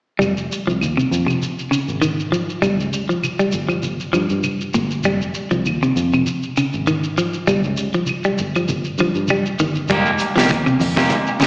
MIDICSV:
0, 0, Header, 1, 8, 480
1, 0, Start_track
1, 0, Key_signature, -4, "minor"
1, 0, Tempo, 605449
1, 163, Time_signature, 4, 2, 24, 8
1, 9093, End_track
2, 0, Start_track
2, 0, Title_t, "Clean electric guitar"
2, 0, Program_c, 0, 27
2, 7856, Note_on_c, 0, 56, 72
2, 7858, Note_on_c, 0, 58, 76
2, 7862, Note_on_c, 0, 63, 81
2, 7865, Note_on_c, 0, 67, 86
2, 8002, Note_off_c, 0, 56, 0
2, 8003, Note_off_c, 0, 58, 0
2, 8005, Note_off_c, 0, 63, 0
2, 8007, Note_off_c, 0, 67, 0
2, 8224, Note_on_c, 0, 67, 49
2, 8227, Note_on_c, 0, 63, 40
2, 8229, Note_on_c, 0, 58, 38
2, 8318, Note_off_c, 0, 58, 0
2, 8319, Note_off_c, 0, 63, 0
2, 8320, Note_off_c, 0, 67, 0
2, 8697, Note_on_c, 0, 63, 60
2, 8699, Note_on_c, 0, 67, 62
2, 8703, Note_on_c, 0, 58, 58
2, 8705, Note_on_c, 0, 56, 51
2, 8830, Note_off_c, 0, 63, 0
2, 8831, Note_off_c, 0, 67, 0
2, 8833, Note_off_c, 0, 58, 0
2, 8834, Note_off_c, 0, 56, 0
2, 9049, Note_on_c, 0, 56, 50
2, 9057, Note_on_c, 0, 58, 55
2, 9057, Note_on_c, 0, 67, 62
2, 9058, Note_on_c, 0, 63, 57
2, 9093, Note_off_c, 0, 56, 0
2, 9093, Note_off_c, 0, 58, 0
2, 9093, Note_off_c, 0, 63, 0
2, 9093, Note_off_c, 0, 67, 0
2, 9093, End_track
3, 0, Start_track
3, 0, Title_t, "Clean electric guitar"
3, 0, Program_c, 1, 27
3, 151, Note_on_c, 1, 55, 73
3, 293, Note_off_c, 1, 55, 0
3, 534, Note_on_c, 1, 53, 56
3, 673, Note_off_c, 1, 53, 0
3, 771, Note_on_c, 1, 48, 61
3, 911, Note_off_c, 1, 48, 0
3, 1003, Note_on_c, 1, 48, 54
3, 1145, Note_off_c, 1, 48, 0
3, 1356, Note_on_c, 1, 49, 57
3, 1497, Note_off_c, 1, 49, 0
3, 1598, Note_on_c, 1, 51, 70
3, 1739, Note_off_c, 1, 51, 0
3, 1840, Note_on_c, 1, 53, 60
3, 1980, Note_off_c, 1, 53, 0
3, 2078, Note_on_c, 1, 55, 79
3, 2219, Note_off_c, 1, 55, 0
3, 2452, Note_on_c, 1, 53, 53
3, 2592, Note_off_c, 1, 53, 0
3, 2691, Note_on_c, 1, 55, 62
3, 2831, Note_off_c, 1, 55, 0
3, 2921, Note_on_c, 1, 53, 53
3, 3065, Note_off_c, 1, 53, 0
3, 3275, Note_on_c, 1, 53, 65
3, 3417, Note_off_c, 1, 53, 0
3, 3761, Note_on_c, 1, 46, 64
3, 3901, Note_off_c, 1, 46, 0
3, 4006, Note_on_c, 1, 55, 77
3, 4145, Note_off_c, 1, 55, 0
3, 4368, Note_on_c, 1, 53, 63
3, 4510, Note_off_c, 1, 53, 0
3, 4620, Note_on_c, 1, 48, 63
3, 4758, Note_off_c, 1, 48, 0
3, 4864, Note_on_c, 1, 48, 53
3, 5001, Note_off_c, 1, 48, 0
3, 5212, Note_on_c, 1, 49, 65
3, 5349, Note_off_c, 1, 49, 0
3, 5449, Note_on_c, 1, 51, 73
3, 5587, Note_off_c, 1, 51, 0
3, 5691, Note_on_c, 1, 53, 61
3, 5829, Note_off_c, 1, 53, 0
3, 5926, Note_on_c, 1, 55, 82
3, 6065, Note_off_c, 1, 55, 0
3, 6298, Note_on_c, 1, 53, 58
3, 6437, Note_off_c, 1, 53, 0
3, 6540, Note_on_c, 1, 55, 60
3, 6678, Note_off_c, 1, 55, 0
3, 6788, Note_on_c, 1, 53, 55
3, 6923, Note_off_c, 1, 53, 0
3, 7138, Note_on_c, 1, 53, 61
3, 7273, Note_off_c, 1, 53, 0
3, 7376, Note_on_c, 1, 55, 69
3, 7512, Note_off_c, 1, 55, 0
3, 7610, Note_on_c, 1, 51, 66
3, 7747, Note_off_c, 1, 51, 0
3, 7846, Note_on_c, 1, 55, 75
3, 7985, Note_off_c, 1, 55, 0
3, 8210, Note_on_c, 1, 53, 62
3, 8350, Note_off_c, 1, 53, 0
3, 8454, Note_on_c, 1, 48, 64
3, 8593, Note_off_c, 1, 48, 0
3, 8693, Note_on_c, 1, 48, 52
3, 8831, Note_off_c, 1, 48, 0
3, 9043, Note_on_c, 1, 49, 60
3, 9093, Note_off_c, 1, 49, 0
3, 9093, End_track
4, 0, Start_track
4, 0, Title_t, "Fingered electric bass"
4, 0, Program_c, 2, 33
4, 155, Note_on_c, 2, 29, 81
4, 381, Note_off_c, 2, 29, 0
4, 534, Note_on_c, 2, 36, 67
4, 635, Note_off_c, 2, 36, 0
4, 647, Note_on_c, 2, 39, 75
4, 766, Note_off_c, 2, 39, 0
4, 883, Note_on_c, 2, 41, 75
4, 1106, Note_off_c, 2, 41, 0
4, 1493, Note_on_c, 2, 32, 69
4, 2052, Note_off_c, 2, 32, 0
4, 2082, Note_on_c, 2, 31, 87
4, 2204, Note_off_c, 2, 31, 0
4, 2209, Note_on_c, 2, 37, 79
4, 2434, Note_off_c, 2, 37, 0
4, 2803, Note_on_c, 2, 31, 78
4, 2924, Note_off_c, 2, 31, 0
4, 3037, Note_on_c, 2, 31, 81
4, 3162, Note_off_c, 2, 31, 0
4, 3278, Note_on_c, 2, 43, 70
4, 3402, Note_off_c, 2, 43, 0
4, 3411, Note_on_c, 2, 43, 65
4, 3636, Note_off_c, 2, 43, 0
4, 3764, Note_on_c, 2, 31, 79
4, 3987, Note_off_c, 2, 31, 0
4, 4009, Note_on_c, 2, 29, 85
4, 4230, Note_off_c, 2, 29, 0
4, 4374, Note_on_c, 2, 36, 82
4, 4476, Note_off_c, 2, 36, 0
4, 4488, Note_on_c, 2, 39, 75
4, 4608, Note_off_c, 2, 39, 0
4, 4724, Note_on_c, 2, 41, 77
4, 4947, Note_off_c, 2, 41, 0
4, 5343, Note_on_c, 2, 32, 79
4, 5897, Note_off_c, 2, 32, 0
4, 5929, Note_on_c, 2, 31, 91
4, 6048, Note_off_c, 2, 31, 0
4, 6065, Note_on_c, 2, 37, 86
4, 6283, Note_off_c, 2, 37, 0
4, 6655, Note_on_c, 2, 31, 77
4, 6771, Note_off_c, 2, 31, 0
4, 6883, Note_on_c, 2, 31, 94
4, 7005, Note_off_c, 2, 31, 0
4, 7119, Note_on_c, 2, 43, 70
4, 7242, Note_off_c, 2, 43, 0
4, 7253, Note_on_c, 2, 43, 66
4, 7476, Note_off_c, 2, 43, 0
4, 7609, Note_on_c, 2, 31, 84
4, 7829, Note_off_c, 2, 31, 0
4, 7855, Note_on_c, 2, 29, 83
4, 8072, Note_off_c, 2, 29, 0
4, 8212, Note_on_c, 2, 36, 71
4, 8315, Note_off_c, 2, 36, 0
4, 8328, Note_on_c, 2, 39, 78
4, 8447, Note_off_c, 2, 39, 0
4, 8563, Note_on_c, 2, 41, 79
4, 8785, Note_off_c, 2, 41, 0
4, 9093, End_track
5, 0, Start_track
5, 0, Title_t, "Muted clean electric guitar strokes"
5, 8095, Note_on_c, 9, 29, 31
5, 8174, Note_off_c, 9, 29, 0
5, 8323, Note_on_c, 9, 29, 37
5, 8402, Note_off_c, 9, 29, 0
5, 8453, Note_on_c, 9, 29, 40
5, 8532, Note_off_c, 9, 29, 0
5, 8572, Note_on_c, 9, 29, 38
5, 8651, Note_off_c, 9, 29, 0
5, 8949, Note_on_c, 9, 29, 44
5, 9028, Note_off_c, 9, 29, 0
5, 9093, End_track
6, 0, Start_track
6, 0, Title_t, "Muted fingered electric bass strokes"
6, 777, Note_on_c, 9, 29, 32
6, 856, Note_off_c, 9, 29, 0
6, 4621, Note_on_c, 9, 29, 35
6, 4700, Note_off_c, 9, 29, 0
6, 8455, Note_on_c, 9, 29, 31
6, 8534, Note_off_c, 9, 29, 0
6, 9093, End_track
7, 0, Start_track
7, 0, Title_t, "Shekere"
7, 168, Note_on_c, 9, 82, 62
7, 248, Note_off_c, 9, 82, 0
7, 295, Note_on_c, 9, 82, 25
7, 375, Note_off_c, 9, 82, 0
7, 412, Note_on_c, 9, 82, 54
7, 491, Note_off_c, 9, 82, 0
7, 548, Note_on_c, 9, 82, 22
7, 627, Note_off_c, 9, 82, 0
7, 656, Note_on_c, 9, 82, 74
7, 736, Note_off_c, 9, 82, 0
7, 788, Note_on_c, 9, 82, 24
7, 868, Note_off_c, 9, 82, 0
7, 892, Note_on_c, 9, 82, 47
7, 971, Note_off_c, 9, 82, 0
7, 1029, Note_on_c, 9, 82, 23
7, 1108, Note_off_c, 9, 82, 0
7, 1127, Note_on_c, 9, 82, 71
7, 1206, Note_off_c, 9, 82, 0
7, 1259, Note_on_c, 9, 82, 24
7, 1339, Note_off_c, 9, 82, 0
7, 1369, Note_on_c, 9, 82, 61
7, 1448, Note_off_c, 9, 82, 0
7, 1493, Note_on_c, 9, 82, 25
7, 1572, Note_off_c, 9, 82, 0
7, 1601, Note_on_c, 9, 82, 82
7, 1681, Note_off_c, 9, 82, 0
7, 1740, Note_on_c, 9, 82, 22
7, 1819, Note_off_c, 9, 82, 0
7, 1849, Note_on_c, 9, 82, 51
7, 1928, Note_off_c, 9, 82, 0
7, 1979, Note_on_c, 9, 82, 23
7, 2058, Note_off_c, 9, 82, 0
7, 2085, Note_on_c, 9, 82, 70
7, 2165, Note_off_c, 9, 82, 0
7, 2221, Note_on_c, 9, 82, 22
7, 2300, Note_off_c, 9, 82, 0
7, 2322, Note_on_c, 9, 82, 57
7, 2402, Note_off_c, 9, 82, 0
7, 2457, Note_on_c, 9, 82, 21
7, 2536, Note_off_c, 9, 82, 0
7, 2567, Note_on_c, 9, 82, 74
7, 2646, Note_off_c, 9, 82, 0
7, 2690, Note_on_c, 9, 82, 27
7, 2770, Note_off_c, 9, 82, 0
7, 2790, Note_on_c, 9, 82, 52
7, 2869, Note_off_c, 9, 82, 0
7, 2931, Note_on_c, 9, 82, 22
7, 3010, Note_off_c, 9, 82, 0
7, 3035, Note_on_c, 9, 82, 69
7, 3114, Note_off_c, 9, 82, 0
7, 3172, Note_on_c, 9, 82, 23
7, 3251, Note_off_c, 9, 82, 0
7, 3280, Note_on_c, 9, 82, 53
7, 3359, Note_off_c, 9, 82, 0
7, 3405, Note_on_c, 9, 82, 25
7, 3485, Note_off_c, 9, 82, 0
7, 3516, Note_on_c, 9, 82, 78
7, 3595, Note_off_c, 9, 82, 0
7, 3655, Note_on_c, 9, 82, 25
7, 3734, Note_off_c, 9, 82, 0
7, 3756, Note_on_c, 9, 82, 57
7, 3836, Note_off_c, 9, 82, 0
7, 3891, Note_on_c, 9, 82, 23
7, 3971, Note_off_c, 9, 82, 0
7, 3991, Note_on_c, 9, 82, 69
7, 4071, Note_off_c, 9, 82, 0
7, 4133, Note_on_c, 9, 82, 23
7, 4212, Note_off_c, 9, 82, 0
7, 4234, Note_on_c, 9, 82, 54
7, 4314, Note_off_c, 9, 82, 0
7, 4367, Note_on_c, 9, 82, 21
7, 4446, Note_off_c, 9, 82, 0
7, 4483, Note_on_c, 9, 82, 72
7, 4562, Note_off_c, 9, 82, 0
7, 4617, Note_on_c, 9, 82, 25
7, 4696, Note_off_c, 9, 82, 0
7, 4729, Note_on_c, 9, 82, 55
7, 4809, Note_off_c, 9, 82, 0
7, 4859, Note_on_c, 9, 82, 23
7, 4938, Note_off_c, 9, 82, 0
7, 4966, Note_on_c, 9, 82, 80
7, 5045, Note_off_c, 9, 82, 0
7, 5097, Note_on_c, 9, 82, 23
7, 5176, Note_off_c, 9, 82, 0
7, 5207, Note_on_c, 9, 82, 59
7, 5286, Note_off_c, 9, 82, 0
7, 5337, Note_on_c, 9, 82, 26
7, 5417, Note_off_c, 9, 82, 0
7, 5447, Note_on_c, 9, 82, 75
7, 5526, Note_off_c, 9, 82, 0
7, 5578, Note_on_c, 9, 82, 24
7, 5658, Note_off_c, 9, 82, 0
7, 5690, Note_on_c, 9, 82, 56
7, 5769, Note_off_c, 9, 82, 0
7, 5815, Note_on_c, 9, 82, 25
7, 5895, Note_off_c, 9, 82, 0
7, 5926, Note_on_c, 9, 82, 73
7, 6005, Note_off_c, 9, 82, 0
7, 6055, Note_on_c, 9, 82, 25
7, 6134, Note_off_c, 9, 82, 0
7, 6159, Note_on_c, 9, 82, 58
7, 6239, Note_off_c, 9, 82, 0
7, 6291, Note_on_c, 9, 82, 23
7, 6370, Note_off_c, 9, 82, 0
7, 6393, Note_on_c, 9, 82, 74
7, 6472, Note_off_c, 9, 82, 0
7, 6529, Note_on_c, 9, 82, 26
7, 6609, Note_off_c, 9, 82, 0
7, 6643, Note_on_c, 9, 82, 62
7, 6722, Note_off_c, 9, 82, 0
7, 6782, Note_on_c, 9, 82, 23
7, 6861, Note_off_c, 9, 82, 0
7, 6884, Note_on_c, 9, 82, 82
7, 6963, Note_off_c, 9, 82, 0
7, 7012, Note_on_c, 9, 82, 25
7, 7091, Note_off_c, 9, 82, 0
7, 7119, Note_on_c, 9, 82, 62
7, 7198, Note_off_c, 9, 82, 0
7, 7253, Note_on_c, 9, 82, 27
7, 7332, Note_off_c, 9, 82, 0
7, 7355, Note_on_c, 9, 82, 81
7, 7434, Note_off_c, 9, 82, 0
7, 7498, Note_on_c, 9, 82, 23
7, 7578, Note_off_c, 9, 82, 0
7, 7602, Note_on_c, 9, 82, 59
7, 7681, Note_off_c, 9, 82, 0
7, 7730, Note_on_c, 9, 82, 26
7, 7809, Note_off_c, 9, 82, 0
7, 7836, Note_on_c, 9, 82, 69
7, 7915, Note_off_c, 9, 82, 0
7, 7972, Note_on_c, 9, 82, 24
7, 8051, Note_off_c, 9, 82, 0
7, 8074, Note_on_c, 9, 82, 55
7, 8154, Note_off_c, 9, 82, 0
7, 8212, Note_on_c, 9, 82, 24
7, 8291, Note_off_c, 9, 82, 0
7, 8312, Note_on_c, 9, 82, 78
7, 8392, Note_off_c, 9, 82, 0
7, 8453, Note_on_c, 9, 82, 26
7, 8533, Note_off_c, 9, 82, 0
7, 8563, Note_on_c, 9, 82, 59
7, 8642, Note_off_c, 9, 82, 0
7, 8699, Note_on_c, 9, 82, 23
7, 8778, Note_off_c, 9, 82, 0
7, 8797, Note_on_c, 9, 82, 79
7, 8876, Note_off_c, 9, 82, 0
7, 8934, Note_on_c, 9, 82, 27
7, 9013, Note_off_c, 9, 82, 0
7, 9043, Note_on_c, 9, 82, 63
7, 9093, Note_off_c, 9, 82, 0
7, 9093, End_track
8, 0, Start_track
8, 0, Title_t, "Drums"
8, 173, Note_on_c, 9, 75, 47
8, 252, Note_off_c, 9, 75, 0
8, 646, Note_on_c, 9, 75, 54
8, 725, Note_off_c, 9, 75, 0
8, 1015, Note_on_c, 9, 75, 54
8, 1095, Note_off_c, 9, 75, 0
8, 1363, Note_on_c, 9, 75, 48
8, 1442, Note_off_c, 9, 75, 0
8, 1600, Note_on_c, 9, 75, 51
8, 1679, Note_off_c, 9, 75, 0
8, 2086, Note_on_c, 9, 75, 50
8, 2165, Note_off_c, 9, 75, 0
8, 2565, Note_on_c, 9, 75, 58
8, 2644, Note_off_c, 9, 75, 0
8, 2930, Note_on_c, 9, 75, 56
8, 3009, Note_off_c, 9, 75, 0
8, 3280, Note_on_c, 9, 75, 56
8, 3359, Note_off_c, 9, 75, 0
8, 3519, Note_on_c, 9, 75, 58
8, 3598, Note_off_c, 9, 75, 0
8, 4005, Note_on_c, 9, 75, 51
8, 4084, Note_off_c, 9, 75, 0
8, 4496, Note_on_c, 9, 75, 62
8, 4575, Note_off_c, 9, 75, 0
8, 4869, Note_on_c, 9, 75, 56
8, 4948, Note_off_c, 9, 75, 0
8, 5214, Note_on_c, 9, 75, 56
8, 5293, Note_off_c, 9, 75, 0
8, 5449, Note_on_c, 9, 75, 55
8, 5528, Note_off_c, 9, 75, 0
8, 5938, Note_on_c, 9, 75, 57
8, 6017, Note_off_c, 9, 75, 0
8, 6416, Note_on_c, 9, 75, 55
8, 6496, Note_off_c, 9, 75, 0
8, 6783, Note_on_c, 9, 75, 57
8, 6862, Note_off_c, 9, 75, 0
8, 7133, Note_on_c, 9, 75, 58
8, 7213, Note_off_c, 9, 75, 0
8, 7373, Note_on_c, 9, 75, 60
8, 7452, Note_off_c, 9, 75, 0
8, 7851, Note_on_c, 9, 75, 51
8, 7854, Note_on_c, 9, 42, 60
8, 7855, Note_on_c, 9, 36, 80
8, 7930, Note_off_c, 9, 75, 0
8, 7933, Note_off_c, 9, 42, 0
8, 7934, Note_off_c, 9, 36, 0
8, 8090, Note_on_c, 9, 42, 43
8, 8169, Note_off_c, 9, 42, 0
8, 8229, Note_on_c, 9, 38, 65
8, 8308, Note_off_c, 9, 38, 0
8, 8327, Note_on_c, 9, 75, 52
8, 8332, Note_on_c, 9, 36, 55
8, 8337, Note_on_c, 9, 42, 63
8, 8406, Note_off_c, 9, 75, 0
8, 8411, Note_off_c, 9, 36, 0
8, 8417, Note_off_c, 9, 42, 0
8, 8558, Note_on_c, 9, 63, 78
8, 8573, Note_on_c, 9, 46, 56
8, 8637, Note_off_c, 9, 63, 0
8, 8652, Note_off_c, 9, 46, 0
8, 8698, Note_on_c, 9, 36, 63
8, 8702, Note_on_c, 9, 38, 67
8, 8702, Note_on_c, 9, 75, 56
8, 8777, Note_off_c, 9, 36, 0
8, 8781, Note_off_c, 9, 38, 0
8, 8782, Note_off_c, 9, 75, 0
8, 8800, Note_on_c, 9, 63, 83
8, 8807, Note_on_c, 9, 42, 56
8, 8879, Note_off_c, 9, 63, 0
8, 8886, Note_off_c, 9, 42, 0
8, 9036, Note_on_c, 9, 63, 86
8, 9051, Note_on_c, 9, 42, 46
8, 9055, Note_on_c, 9, 75, 63
8, 9058, Note_on_c, 9, 38, 64
8, 9093, Note_off_c, 9, 38, 0
8, 9093, Note_off_c, 9, 42, 0
8, 9093, Note_off_c, 9, 63, 0
8, 9093, Note_off_c, 9, 75, 0
8, 9093, End_track
0, 0, End_of_file